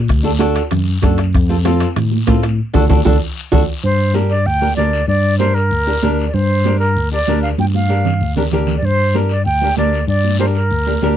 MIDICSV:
0, 0, Header, 1, 6, 480
1, 0, Start_track
1, 0, Tempo, 312175
1, 143, Time_signature, 4, 2, 24, 8
1, 17173, End_track
2, 0, Start_track
2, 0, Title_t, "Flute"
2, 0, Program_c, 0, 73
2, 5903, Note_on_c, 0, 72, 99
2, 6350, Note_off_c, 0, 72, 0
2, 6619, Note_on_c, 0, 74, 97
2, 6863, Note_on_c, 0, 79, 102
2, 6886, Note_off_c, 0, 74, 0
2, 7314, Note_off_c, 0, 79, 0
2, 7324, Note_on_c, 0, 74, 94
2, 7780, Note_off_c, 0, 74, 0
2, 7811, Note_on_c, 0, 74, 104
2, 8264, Note_off_c, 0, 74, 0
2, 8285, Note_on_c, 0, 72, 93
2, 8525, Note_on_c, 0, 70, 97
2, 8548, Note_off_c, 0, 72, 0
2, 9495, Note_off_c, 0, 70, 0
2, 9659, Note_on_c, 0, 74, 61
2, 9748, Note_on_c, 0, 72, 88
2, 9771, Note_off_c, 0, 74, 0
2, 10437, Note_off_c, 0, 72, 0
2, 10446, Note_on_c, 0, 70, 89
2, 10901, Note_off_c, 0, 70, 0
2, 10960, Note_on_c, 0, 74, 101
2, 11400, Note_off_c, 0, 74, 0
2, 11421, Note_on_c, 0, 77, 86
2, 11513, Note_off_c, 0, 77, 0
2, 11683, Note_on_c, 0, 79, 85
2, 11775, Note_off_c, 0, 79, 0
2, 11915, Note_on_c, 0, 77, 81
2, 12809, Note_off_c, 0, 77, 0
2, 13474, Note_on_c, 0, 74, 66
2, 13609, Note_on_c, 0, 72, 102
2, 13633, Note_off_c, 0, 74, 0
2, 14077, Note_off_c, 0, 72, 0
2, 14319, Note_on_c, 0, 74, 92
2, 14530, Note_off_c, 0, 74, 0
2, 14540, Note_on_c, 0, 79, 101
2, 14989, Note_off_c, 0, 79, 0
2, 15036, Note_on_c, 0, 74, 88
2, 15478, Note_off_c, 0, 74, 0
2, 15505, Note_on_c, 0, 74, 99
2, 15952, Note_off_c, 0, 74, 0
2, 15985, Note_on_c, 0, 72, 86
2, 16078, Note_off_c, 0, 72, 0
2, 16225, Note_on_c, 0, 70, 88
2, 17124, Note_off_c, 0, 70, 0
2, 17173, End_track
3, 0, Start_track
3, 0, Title_t, "Nylon-string guitar"
3, 0, Program_c, 1, 24
3, 356, Note_on_c, 1, 62, 71
3, 367, Note_on_c, 1, 66, 61
3, 376, Note_on_c, 1, 69, 89
3, 453, Note_off_c, 1, 62, 0
3, 459, Note_off_c, 1, 66, 0
3, 464, Note_off_c, 1, 69, 0
3, 599, Note_on_c, 1, 62, 75
3, 600, Note_on_c, 1, 66, 73
3, 608, Note_on_c, 1, 69, 87
3, 947, Note_off_c, 1, 62, 0
3, 947, Note_off_c, 1, 66, 0
3, 950, Note_off_c, 1, 69, 0
3, 1572, Note_on_c, 1, 62, 71
3, 1578, Note_on_c, 1, 66, 62
3, 1584, Note_on_c, 1, 69, 80
3, 1830, Note_off_c, 1, 62, 0
3, 1833, Note_off_c, 1, 66, 0
3, 1835, Note_off_c, 1, 69, 0
3, 2291, Note_on_c, 1, 60, 71
3, 2300, Note_on_c, 1, 65, 70
3, 2307, Note_on_c, 1, 69, 84
3, 2382, Note_off_c, 1, 60, 0
3, 2386, Note_off_c, 1, 65, 0
3, 2389, Note_off_c, 1, 69, 0
3, 2535, Note_on_c, 1, 60, 76
3, 2542, Note_on_c, 1, 65, 76
3, 2549, Note_on_c, 1, 69, 84
3, 2875, Note_off_c, 1, 60, 0
3, 2879, Note_off_c, 1, 65, 0
3, 2882, Note_off_c, 1, 69, 0
3, 3490, Note_on_c, 1, 60, 79
3, 3500, Note_on_c, 1, 65, 64
3, 3503, Note_on_c, 1, 69, 81
3, 3749, Note_off_c, 1, 60, 0
3, 3754, Note_off_c, 1, 65, 0
3, 3755, Note_off_c, 1, 69, 0
3, 4205, Note_on_c, 1, 62, 97
3, 4210, Note_on_c, 1, 66, 89
3, 4215, Note_on_c, 1, 69, 96
3, 4367, Note_off_c, 1, 66, 0
3, 4368, Note_off_c, 1, 69, 0
3, 4369, Note_off_c, 1, 62, 0
3, 4448, Note_on_c, 1, 69, 83
3, 4449, Note_on_c, 1, 62, 90
3, 4453, Note_on_c, 1, 66, 77
3, 4606, Note_off_c, 1, 69, 0
3, 4609, Note_off_c, 1, 62, 0
3, 4611, Note_off_c, 1, 66, 0
3, 4693, Note_on_c, 1, 66, 97
3, 4698, Note_on_c, 1, 62, 85
3, 4706, Note_on_c, 1, 69, 89
3, 4851, Note_off_c, 1, 66, 0
3, 4855, Note_off_c, 1, 69, 0
3, 4856, Note_off_c, 1, 62, 0
3, 5409, Note_on_c, 1, 62, 85
3, 5410, Note_on_c, 1, 66, 95
3, 5420, Note_on_c, 1, 69, 92
3, 5569, Note_off_c, 1, 66, 0
3, 5570, Note_off_c, 1, 62, 0
3, 5573, Note_off_c, 1, 69, 0
3, 6357, Note_on_c, 1, 62, 58
3, 6366, Note_on_c, 1, 67, 55
3, 6376, Note_on_c, 1, 70, 69
3, 6623, Note_off_c, 1, 62, 0
3, 6627, Note_off_c, 1, 67, 0
3, 6632, Note_off_c, 1, 70, 0
3, 7092, Note_on_c, 1, 62, 58
3, 7101, Note_on_c, 1, 67, 50
3, 7102, Note_on_c, 1, 70, 63
3, 7183, Note_off_c, 1, 62, 0
3, 7184, Note_off_c, 1, 67, 0
3, 7187, Note_off_c, 1, 70, 0
3, 7346, Note_on_c, 1, 62, 68
3, 7355, Note_on_c, 1, 67, 62
3, 7357, Note_on_c, 1, 70, 70
3, 7682, Note_off_c, 1, 62, 0
3, 7683, Note_off_c, 1, 67, 0
3, 7687, Note_off_c, 1, 70, 0
3, 8286, Note_on_c, 1, 62, 65
3, 8302, Note_on_c, 1, 67, 61
3, 8302, Note_on_c, 1, 70, 79
3, 8548, Note_off_c, 1, 62, 0
3, 8554, Note_off_c, 1, 70, 0
3, 8556, Note_off_c, 1, 67, 0
3, 9020, Note_on_c, 1, 62, 61
3, 9028, Note_on_c, 1, 67, 49
3, 9034, Note_on_c, 1, 70, 64
3, 9108, Note_off_c, 1, 62, 0
3, 9109, Note_off_c, 1, 67, 0
3, 9113, Note_off_c, 1, 70, 0
3, 9267, Note_on_c, 1, 62, 79
3, 9279, Note_on_c, 1, 70, 89
3, 9282, Note_on_c, 1, 67, 71
3, 9602, Note_off_c, 1, 62, 0
3, 9608, Note_off_c, 1, 70, 0
3, 9610, Note_off_c, 1, 67, 0
3, 10233, Note_on_c, 1, 62, 62
3, 10241, Note_on_c, 1, 67, 62
3, 10252, Note_on_c, 1, 70, 70
3, 10481, Note_off_c, 1, 62, 0
3, 10485, Note_off_c, 1, 67, 0
3, 10490, Note_off_c, 1, 70, 0
3, 10942, Note_on_c, 1, 62, 62
3, 10952, Note_on_c, 1, 67, 53
3, 10962, Note_on_c, 1, 70, 65
3, 11028, Note_off_c, 1, 62, 0
3, 11033, Note_off_c, 1, 67, 0
3, 11036, Note_off_c, 1, 70, 0
3, 11193, Note_on_c, 1, 62, 68
3, 11202, Note_on_c, 1, 67, 53
3, 11209, Note_on_c, 1, 70, 70
3, 11526, Note_off_c, 1, 62, 0
3, 11527, Note_off_c, 1, 67, 0
3, 11533, Note_off_c, 1, 70, 0
3, 12127, Note_on_c, 1, 62, 65
3, 12141, Note_on_c, 1, 67, 64
3, 12143, Note_on_c, 1, 70, 66
3, 12389, Note_off_c, 1, 62, 0
3, 12392, Note_off_c, 1, 67, 0
3, 12396, Note_off_c, 1, 70, 0
3, 12865, Note_on_c, 1, 62, 74
3, 12871, Note_on_c, 1, 67, 64
3, 12878, Note_on_c, 1, 70, 81
3, 12949, Note_off_c, 1, 62, 0
3, 12953, Note_off_c, 1, 67, 0
3, 12955, Note_off_c, 1, 70, 0
3, 13114, Note_on_c, 1, 62, 67
3, 13117, Note_on_c, 1, 67, 68
3, 13126, Note_on_c, 1, 70, 87
3, 13445, Note_off_c, 1, 67, 0
3, 13446, Note_off_c, 1, 62, 0
3, 13452, Note_off_c, 1, 70, 0
3, 14056, Note_on_c, 1, 62, 66
3, 14065, Note_on_c, 1, 67, 58
3, 14073, Note_on_c, 1, 70, 69
3, 14313, Note_off_c, 1, 62, 0
3, 14318, Note_off_c, 1, 67, 0
3, 14321, Note_off_c, 1, 70, 0
3, 14802, Note_on_c, 1, 62, 59
3, 14810, Note_on_c, 1, 67, 56
3, 14817, Note_on_c, 1, 70, 67
3, 14878, Note_off_c, 1, 62, 0
3, 14882, Note_off_c, 1, 67, 0
3, 14884, Note_off_c, 1, 70, 0
3, 15021, Note_on_c, 1, 62, 62
3, 15025, Note_on_c, 1, 67, 62
3, 15036, Note_on_c, 1, 70, 69
3, 15360, Note_off_c, 1, 62, 0
3, 15360, Note_off_c, 1, 67, 0
3, 15367, Note_off_c, 1, 70, 0
3, 15980, Note_on_c, 1, 62, 67
3, 15984, Note_on_c, 1, 67, 57
3, 15995, Note_on_c, 1, 70, 70
3, 16236, Note_off_c, 1, 62, 0
3, 16236, Note_off_c, 1, 67, 0
3, 16242, Note_off_c, 1, 70, 0
3, 16710, Note_on_c, 1, 62, 66
3, 16713, Note_on_c, 1, 67, 52
3, 16720, Note_on_c, 1, 70, 65
3, 16792, Note_off_c, 1, 62, 0
3, 16792, Note_off_c, 1, 67, 0
3, 16797, Note_off_c, 1, 70, 0
3, 16949, Note_on_c, 1, 62, 74
3, 16957, Note_on_c, 1, 67, 71
3, 16973, Note_on_c, 1, 70, 93
3, 17173, Note_off_c, 1, 62, 0
3, 17173, Note_off_c, 1, 67, 0
3, 17173, Note_off_c, 1, 70, 0
3, 17173, End_track
4, 0, Start_track
4, 0, Title_t, "Tine electric piano"
4, 0, Program_c, 2, 4
4, 145, Note_on_c, 2, 38, 101
4, 912, Note_off_c, 2, 38, 0
4, 1102, Note_on_c, 2, 42, 93
4, 1487, Note_off_c, 2, 42, 0
4, 1587, Note_on_c, 2, 42, 91
4, 2065, Note_off_c, 2, 42, 0
4, 2070, Note_on_c, 2, 41, 111
4, 2835, Note_off_c, 2, 41, 0
4, 3020, Note_on_c, 2, 45, 88
4, 3405, Note_off_c, 2, 45, 0
4, 3504, Note_on_c, 2, 45, 92
4, 3984, Note_off_c, 2, 45, 0
4, 4227, Note_on_c, 2, 38, 98
4, 4404, Note_off_c, 2, 38, 0
4, 4466, Note_on_c, 2, 38, 85
4, 4644, Note_off_c, 2, 38, 0
4, 4706, Note_on_c, 2, 38, 79
4, 4883, Note_off_c, 2, 38, 0
4, 5426, Note_on_c, 2, 38, 91
4, 5604, Note_off_c, 2, 38, 0
4, 5900, Note_on_c, 2, 43, 97
4, 6855, Note_on_c, 2, 38, 84
4, 6862, Note_off_c, 2, 43, 0
4, 7243, Note_off_c, 2, 38, 0
4, 7337, Note_on_c, 2, 38, 87
4, 7724, Note_off_c, 2, 38, 0
4, 7809, Note_on_c, 2, 43, 99
4, 8777, Note_off_c, 2, 43, 0
4, 8781, Note_on_c, 2, 38, 77
4, 9167, Note_off_c, 2, 38, 0
4, 9274, Note_on_c, 2, 38, 81
4, 9654, Note_off_c, 2, 38, 0
4, 9748, Note_on_c, 2, 43, 102
4, 10707, Note_off_c, 2, 43, 0
4, 10709, Note_on_c, 2, 38, 82
4, 11091, Note_off_c, 2, 38, 0
4, 11186, Note_on_c, 2, 38, 81
4, 11570, Note_off_c, 2, 38, 0
4, 11660, Note_on_c, 2, 43, 96
4, 12623, Note_off_c, 2, 43, 0
4, 12627, Note_on_c, 2, 38, 82
4, 13010, Note_off_c, 2, 38, 0
4, 13100, Note_on_c, 2, 38, 79
4, 13486, Note_off_c, 2, 38, 0
4, 13571, Note_on_c, 2, 43, 87
4, 14539, Note_off_c, 2, 43, 0
4, 14547, Note_on_c, 2, 38, 83
4, 14930, Note_off_c, 2, 38, 0
4, 15021, Note_on_c, 2, 38, 84
4, 15407, Note_off_c, 2, 38, 0
4, 15498, Note_on_c, 2, 43, 93
4, 16462, Note_off_c, 2, 43, 0
4, 16465, Note_on_c, 2, 38, 85
4, 16850, Note_off_c, 2, 38, 0
4, 16953, Note_on_c, 2, 38, 89
4, 17173, Note_off_c, 2, 38, 0
4, 17173, End_track
5, 0, Start_track
5, 0, Title_t, "Two-headed folk drums"
5, 145, Note_on_c, 9, 36, 86
5, 152, Note_on_c, 9, 37, 81
5, 299, Note_off_c, 9, 36, 0
5, 306, Note_off_c, 9, 37, 0
5, 626, Note_on_c, 9, 37, 74
5, 779, Note_off_c, 9, 37, 0
5, 866, Note_on_c, 9, 37, 80
5, 1019, Note_off_c, 9, 37, 0
5, 1105, Note_on_c, 9, 37, 74
5, 1259, Note_off_c, 9, 37, 0
5, 1586, Note_on_c, 9, 36, 72
5, 1594, Note_on_c, 9, 37, 68
5, 1739, Note_off_c, 9, 36, 0
5, 1748, Note_off_c, 9, 37, 0
5, 1827, Note_on_c, 9, 37, 86
5, 1981, Note_off_c, 9, 37, 0
5, 2069, Note_on_c, 9, 36, 86
5, 2083, Note_on_c, 9, 37, 84
5, 2222, Note_off_c, 9, 36, 0
5, 2236, Note_off_c, 9, 37, 0
5, 2547, Note_on_c, 9, 37, 77
5, 2701, Note_off_c, 9, 37, 0
5, 2786, Note_on_c, 9, 37, 78
5, 2939, Note_off_c, 9, 37, 0
5, 3021, Note_on_c, 9, 37, 84
5, 3174, Note_off_c, 9, 37, 0
5, 3506, Note_on_c, 9, 36, 76
5, 3507, Note_on_c, 9, 37, 76
5, 3660, Note_off_c, 9, 36, 0
5, 3661, Note_off_c, 9, 37, 0
5, 3741, Note_on_c, 9, 37, 89
5, 3895, Note_off_c, 9, 37, 0
5, 4227, Note_on_c, 9, 36, 92
5, 4380, Note_off_c, 9, 36, 0
5, 4464, Note_on_c, 9, 36, 99
5, 4618, Note_off_c, 9, 36, 0
5, 4709, Note_on_c, 9, 36, 95
5, 4863, Note_off_c, 9, 36, 0
5, 5426, Note_on_c, 9, 36, 90
5, 5580, Note_off_c, 9, 36, 0
5, 17173, End_track
6, 0, Start_track
6, 0, Title_t, "Drums"
6, 128, Note_on_c, 9, 74, 77
6, 142, Note_on_c, 9, 65, 64
6, 282, Note_off_c, 9, 74, 0
6, 296, Note_off_c, 9, 65, 0
6, 367, Note_on_c, 9, 63, 61
6, 521, Note_off_c, 9, 63, 0
6, 600, Note_on_c, 9, 73, 64
6, 608, Note_on_c, 9, 63, 90
6, 621, Note_on_c, 9, 65, 66
6, 754, Note_off_c, 9, 73, 0
6, 761, Note_off_c, 9, 63, 0
6, 775, Note_off_c, 9, 65, 0
6, 844, Note_on_c, 9, 73, 70
6, 855, Note_on_c, 9, 65, 66
6, 998, Note_off_c, 9, 73, 0
6, 1009, Note_off_c, 9, 65, 0
6, 1089, Note_on_c, 9, 65, 62
6, 1091, Note_on_c, 9, 74, 77
6, 1098, Note_on_c, 9, 63, 34
6, 1098, Note_on_c, 9, 64, 80
6, 1243, Note_off_c, 9, 65, 0
6, 1245, Note_off_c, 9, 74, 0
6, 1252, Note_off_c, 9, 63, 0
6, 1252, Note_off_c, 9, 64, 0
6, 1565, Note_on_c, 9, 73, 65
6, 1569, Note_on_c, 9, 63, 75
6, 1578, Note_on_c, 9, 65, 64
6, 1719, Note_off_c, 9, 73, 0
6, 1723, Note_off_c, 9, 63, 0
6, 1731, Note_off_c, 9, 65, 0
6, 1810, Note_on_c, 9, 73, 70
6, 1813, Note_on_c, 9, 65, 65
6, 1963, Note_off_c, 9, 73, 0
6, 1967, Note_off_c, 9, 65, 0
6, 2042, Note_on_c, 9, 74, 69
6, 2060, Note_on_c, 9, 63, 32
6, 2067, Note_on_c, 9, 65, 58
6, 2196, Note_off_c, 9, 74, 0
6, 2214, Note_off_c, 9, 63, 0
6, 2221, Note_off_c, 9, 65, 0
6, 2536, Note_on_c, 9, 73, 69
6, 2539, Note_on_c, 9, 65, 64
6, 2540, Note_on_c, 9, 63, 95
6, 2689, Note_off_c, 9, 73, 0
6, 2692, Note_off_c, 9, 65, 0
6, 2694, Note_off_c, 9, 63, 0
6, 2772, Note_on_c, 9, 73, 67
6, 2774, Note_on_c, 9, 65, 69
6, 2926, Note_off_c, 9, 73, 0
6, 2927, Note_off_c, 9, 65, 0
6, 3018, Note_on_c, 9, 65, 65
6, 3019, Note_on_c, 9, 74, 64
6, 3021, Note_on_c, 9, 63, 31
6, 3021, Note_on_c, 9, 64, 81
6, 3172, Note_off_c, 9, 65, 0
6, 3173, Note_off_c, 9, 74, 0
6, 3175, Note_off_c, 9, 63, 0
6, 3175, Note_off_c, 9, 64, 0
6, 3249, Note_on_c, 9, 63, 68
6, 3403, Note_off_c, 9, 63, 0
6, 3492, Note_on_c, 9, 63, 87
6, 3496, Note_on_c, 9, 65, 74
6, 3496, Note_on_c, 9, 66, 70
6, 3498, Note_on_c, 9, 73, 55
6, 3646, Note_off_c, 9, 63, 0
6, 3650, Note_off_c, 9, 65, 0
6, 3650, Note_off_c, 9, 66, 0
6, 3651, Note_off_c, 9, 73, 0
6, 3734, Note_on_c, 9, 73, 72
6, 3742, Note_on_c, 9, 65, 65
6, 3888, Note_off_c, 9, 73, 0
6, 3896, Note_off_c, 9, 65, 0
6, 4211, Note_on_c, 9, 65, 95
6, 4216, Note_on_c, 9, 64, 88
6, 4216, Note_on_c, 9, 74, 91
6, 4365, Note_off_c, 9, 65, 0
6, 4370, Note_off_c, 9, 64, 0
6, 4370, Note_off_c, 9, 74, 0
6, 4454, Note_on_c, 9, 64, 99
6, 4455, Note_on_c, 9, 74, 92
6, 4457, Note_on_c, 9, 65, 81
6, 4607, Note_off_c, 9, 64, 0
6, 4609, Note_off_c, 9, 74, 0
6, 4611, Note_off_c, 9, 65, 0
6, 4690, Note_on_c, 9, 74, 88
6, 4691, Note_on_c, 9, 65, 98
6, 4696, Note_on_c, 9, 64, 89
6, 4844, Note_off_c, 9, 74, 0
6, 4845, Note_off_c, 9, 65, 0
6, 4849, Note_off_c, 9, 64, 0
6, 5409, Note_on_c, 9, 65, 103
6, 5418, Note_on_c, 9, 64, 95
6, 5420, Note_on_c, 9, 74, 89
6, 5563, Note_off_c, 9, 65, 0
6, 5572, Note_off_c, 9, 64, 0
6, 5573, Note_off_c, 9, 74, 0
6, 5897, Note_on_c, 9, 74, 71
6, 5902, Note_on_c, 9, 63, 33
6, 6051, Note_off_c, 9, 74, 0
6, 6056, Note_off_c, 9, 63, 0
6, 6373, Note_on_c, 9, 73, 66
6, 6384, Note_on_c, 9, 63, 85
6, 6527, Note_off_c, 9, 73, 0
6, 6538, Note_off_c, 9, 63, 0
6, 6608, Note_on_c, 9, 73, 59
6, 6761, Note_off_c, 9, 73, 0
6, 6853, Note_on_c, 9, 74, 69
6, 6868, Note_on_c, 9, 63, 31
6, 7007, Note_off_c, 9, 74, 0
6, 7022, Note_off_c, 9, 63, 0
6, 7102, Note_on_c, 9, 63, 62
6, 7256, Note_off_c, 9, 63, 0
6, 7336, Note_on_c, 9, 63, 79
6, 7337, Note_on_c, 9, 73, 67
6, 7490, Note_off_c, 9, 63, 0
6, 7491, Note_off_c, 9, 73, 0
6, 7586, Note_on_c, 9, 73, 75
6, 7740, Note_off_c, 9, 73, 0
6, 7828, Note_on_c, 9, 63, 34
6, 7831, Note_on_c, 9, 74, 70
6, 7981, Note_off_c, 9, 63, 0
6, 7984, Note_off_c, 9, 74, 0
6, 8299, Note_on_c, 9, 63, 94
6, 8304, Note_on_c, 9, 73, 59
6, 8453, Note_off_c, 9, 63, 0
6, 8457, Note_off_c, 9, 73, 0
6, 8537, Note_on_c, 9, 73, 64
6, 8691, Note_off_c, 9, 73, 0
6, 8781, Note_on_c, 9, 74, 70
6, 8782, Note_on_c, 9, 63, 33
6, 8935, Note_off_c, 9, 74, 0
6, 8936, Note_off_c, 9, 63, 0
6, 9267, Note_on_c, 9, 73, 60
6, 9268, Note_on_c, 9, 63, 79
6, 9421, Note_off_c, 9, 63, 0
6, 9421, Note_off_c, 9, 73, 0
6, 9521, Note_on_c, 9, 73, 68
6, 9675, Note_off_c, 9, 73, 0
6, 9743, Note_on_c, 9, 74, 67
6, 9747, Note_on_c, 9, 63, 33
6, 9897, Note_off_c, 9, 74, 0
6, 9900, Note_off_c, 9, 63, 0
6, 10228, Note_on_c, 9, 63, 91
6, 10234, Note_on_c, 9, 73, 61
6, 10382, Note_off_c, 9, 63, 0
6, 10388, Note_off_c, 9, 73, 0
6, 10468, Note_on_c, 9, 73, 56
6, 10622, Note_off_c, 9, 73, 0
6, 10712, Note_on_c, 9, 74, 72
6, 10714, Note_on_c, 9, 63, 34
6, 10866, Note_off_c, 9, 74, 0
6, 10867, Note_off_c, 9, 63, 0
6, 11187, Note_on_c, 9, 63, 83
6, 11190, Note_on_c, 9, 73, 61
6, 11340, Note_off_c, 9, 63, 0
6, 11344, Note_off_c, 9, 73, 0
6, 11426, Note_on_c, 9, 73, 74
6, 11580, Note_off_c, 9, 73, 0
6, 11663, Note_on_c, 9, 63, 78
6, 11670, Note_on_c, 9, 74, 75
6, 11817, Note_off_c, 9, 63, 0
6, 11824, Note_off_c, 9, 74, 0
6, 11907, Note_on_c, 9, 63, 69
6, 12061, Note_off_c, 9, 63, 0
6, 12147, Note_on_c, 9, 73, 62
6, 12300, Note_off_c, 9, 73, 0
6, 12377, Note_on_c, 9, 64, 95
6, 12387, Note_on_c, 9, 73, 61
6, 12530, Note_off_c, 9, 64, 0
6, 12541, Note_off_c, 9, 73, 0
6, 12621, Note_on_c, 9, 74, 71
6, 12775, Note_off_c, 9, 74, 0
6, 12856, Note_on_c, 9, 64, 66
6, 13010, Note_off_c, 9, 64, 0
6, 13093, Note_on_c, 9, 73, 60
6, 13096, Note_on_c, 9, 64, 71
6, 13247, Note_off_c, 9, 73, 0
6, 13250, Note_off_c, 9, 64, 0
6, 13333, Note_on_c, 9, 73, 75
6, 13335, Note_on_c, 9, 64, 80
6, 13487, Note_off_c, 9, 73, 0
6, 13489, Note_off_c, 9, 64, 0
6, 13569, Note_on_c, 9, 74, 66
6, 13578, Note_on_c, 9, 63, 34
6, 13722, Note_off_c, 9, 74, 0
6, 13732, Note_off_c, 9, 63, 0
6, 14051, Note_on_c, 9, 73, 65
6, 14066, Note_on_c, 9, 63, 84
6, 14204, Note_off_c, 9, 73, 0
6, 14220, Note_off_c, 9, 63, 0
6, 14290, Note_on_c, 9, 73, 64
6, 14444, Note_off_c, 9, 73, 0
6, 14535, Note_on_c, 9, 74, 70
6, 14549, Note_on_c, 9, 63, 33
6, 14689, Note_off_c, 9, 74, 0
6, 14703, Note_off_c, 9, 63, 0
6, 14785, Note_on_c, 9, 63, 65
6, 14939, Note_off_c, 9, 63, 0
6, 15021, Note_on_c, 9, 63, 80
6, 15027, Note_on_c, 9, 73, 67
6, 15175, Note_off_c, 9, 63, 0
6, 15181, Note_off_c, 9, 73, 0
6, 15269, Note_on_c, 9, 73, 71
6, 15422, Note_off_c, 9, 73, 0
6, 15505, Note_on_c, 9, 74, 78
6, 15507, Note_on_c, 9, 63, 30
6, 15659, Note_off_c, 9, 74, 0
6, 15661, Note_off_c, 9, 63, 0
6, 15747, Note_on_c, 9, 63, 62
6, 15900, Note_off_c, 9, 63, 0
6, 15979, Note_on_c, 9, 63, 88
6, 15986, Note_on_c, 9, 73, 72
6, 16133, Note_off_c, 9, 63, 0
6, 16139, Note_off_c, 9, 73, 0
6, 16224, Note_on_c, 9, 73, 61
6, 16378, Note_off_c, 9, 73, 0
6, 16461, Note_on_c, 9, 74, 65
6, 16462, Note_on_c, 9, 63, 35
6, 16615, Note_off_c, 9, 63, 0
6, 16615, Note_off_c, 9, 74, 0
6, 16710, Note_on_c, 9, 63, 62
6, 16864, Note_off_c, 9, 63, 0
6, 16937, Note_on_c, 9, 73, 67
6, 16955, Note_on_c, 9, 63, 76
6, 17090, Note_off_c, 9, 73, 0
6, 17109, Note_off_c, 9, 63, 0
6, 17173, End_track
0, 0, End_of_file